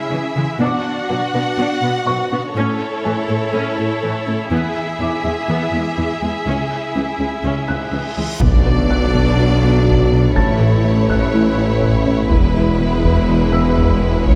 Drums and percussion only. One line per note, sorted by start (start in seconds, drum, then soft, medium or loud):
8.41 taiko medium
9.14 taiko medium
9.88 taiko medium
10.37 taiko medium
11.10 taiko medium
11.83 taiko medium
12.31 taiko medium
13.04 taiko medium
13.78 taiko medium
14.27 taiko medium